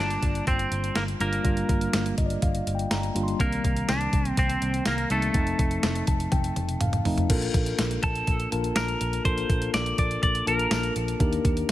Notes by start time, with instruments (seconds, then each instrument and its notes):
Already playing: tine electric piano G3 A#3 D4 F4
0.00 picked electric bass G1, clean electric guitar D4
0.10 closed hi-hat
0.23 picked electric bass G1, kick, closed hi-hat
0.35 closed hi-hat
0.47 picked electric bass G1, clean electric guitar C4, kick, closed hi-hat
0.59 closed hi-hat
0.71 picked electric bass G1, closed hi-hat
0.84 closed hi-hat
0.95 picked electric bass G1, clean electric guitar A#3, snare, closed hi-hat
1.08 closed hi-hat
1.20 picked electric bass G1, tine electric piano G3 A#3 D4 F4, clean electric guitar A#3, closed hi-hat
1.33 closed hi-hat
1.44 picked electric bass G1, tine electric piano G3 A#3 D4 F4, kick, closed hi-hat
1.57 closed hi-hat
1.69 picked electric bass G1, kick, closed hi-hat
1.81 closed hi-hat
1.93 picked electric bass G1, snare, closed hi-hat, tambourine
2.06 closed hi-hat
2.18 picked electric bass G1, tine electric piano D#5, kick, closed hi-hat
2.26 tine electric piano D5
2.30 closed hi-hat
2.42 picked electric bass G1, tine electric piano F5, kick, closed hi-hat
2.55 closed hi-hat
2.67 picked electric bass G1, closed hi-hat
2.75 tine electric piano G5
2.79 closed hi-hat
2.91 picked electric bass G1, tine electric piano A#5, snare, closed hi-hat, tambourine
3.03 closed hi-hat
3.15 picked electric bass G1, tine electric piano G3 A#3 D4 F4, closed hi-hat
3.23 tine electric piano C6
3.28 closed hi-hat
3.39 picked electric bass C2, tine electric piano G3 A#3 C4 D4, clean electric guitar A#3, kick, closed hi-hat
3.46 tine electric piano D#3
3.52 closed hi-hat
3.64 picked electric bass C2, kick, closed hi-hat
3.77 closed hi-hat
3.89 picked electric bass C2, clean electric guitar D4, snare, closed hi-hat, tambourine
4.01 closed hi-hat
4.13 picked electric bass C2, kick, closed hi-hat
4.25 closed hi-hat
4.37 picked electric bass C2, clean electric guitar C4, kick, closed hi-hat
4.50 closed hi-hat
4.62 picked electric bass C2, closed hi-hat
4.74 closed hi-hat
4.86 picked electric bass C2, clean electric guitar A#3, snare, closed hi-hat, tambourine
4.98 closed hi-hat
5.10 picked electric bass C2, tine electric piano G3 A#3 C4 D#4, clean electric guitar A3, closed hi-hat
5.22 closed hi-hat
5.34 picked electric bass F1, tine electric piano F3 A3 C4 D#4, kick, closed hi-hat
5.47 closed hi-hat
5.59 picked electric bass F1, kick, closed hi-hat
5.71 closed hi-hat
5.83 picked electric bass F1, snare, closed hi-hat, tambourine
5.95 closed hi-hat
6.07 picked electric bass F1, tine electric piano A5, kick, closed hi-hat
6.20 closed hi-hat
6.32 picked electric bass F1, tine electric piano G5, kick, closed hi-hat, high tom
6.44 closed hi-hat
6.56 picked electric bass F1, closed hi-hat, mid tom
6.69 closed hi-hat
6.81 picked electric bass F1, tine electric piano F5, closed hi-hat, mid tom
6.93 closed hi-hat, mid tom
7.05 picked electric bass F1, tine electric piano F3 A3 C4 D#4, floor tom, open hi-hat
7.18 closed hi-hat, floor tom
7.29 picked electric bass A#1, tine electric piano A#3 D4 F4 A4 A#4, kick, closed hi-hat, crash
7.42 closed hi-hat
7.54 picked electric bass A#1, kick, closed hi-hat
7.66 closed hi-hat
7.79 picked electric bass A#1, snare, closed hi-hat, tambourine
7.91 closed hi-hat
8.03 picked electric bass A#1, clean electric guitar A4, kick, closed hi-hat
8.15 closed hi-hat
8.27 picked electric bass A#1, kick, closed hi-hat
8.40 closed hi-hat
8.51 picked electric bass A#1, tine electric piano A#3 D4 F4 A#4 A5, closed hi-hat
8.64 closed hi-hat
8.76 picked electric bass A#1, clean electric guitar A#4, snare, closed hi-hat, tambourine
8.88 closed hi-hat
9.01 picked electric bass A#1, closed hi-hat
9.13 closed hi-hat
9.24 picked electric bass A#1, tine electric piano A#3 D4 F4 A4 A#4, clean electric guitar C5, kick, closed hi-hat
9.38 closed hi-hat
9.50 picked electric bass A#1, kick, closed hi-hat
9.62 closed hi-hat
9.74 picked electric bass A#1, clean electric guitar D5, snare, closed hi-hat, tambourine
9.86 closed hi-hat
9.98 picked electric bass A#1, clean electric guitar D5, kick, closed hi-hat
10.11 closed hi-hat
10.23 picked electric bass A#1, clean electric guitar D5, kick, closed hi-hat
10.35 closed hi-hat
10.46 picked electric bass A#1, tine electric piano A#3 D4 F4 A#4 A5, clean electric guitar A#4, closed hi-hat
10.59 closed hi-hat
10.71 picked electric bass A#1, snare, closed hi-hat, tambourine
10.83 closed hi-hat
10.96 picked electric bass A#1, closed hi-hat
11.08 closed hi-hat
11.20 picked electric bass D#2, tine electric piano A#3 D4 D#4 G4 A#4, kick, closed hi-hat
11.33 closed hi-hat
11.45 picked electric bass D#2, kick, closed hi-hat
11.57 closed hi-hat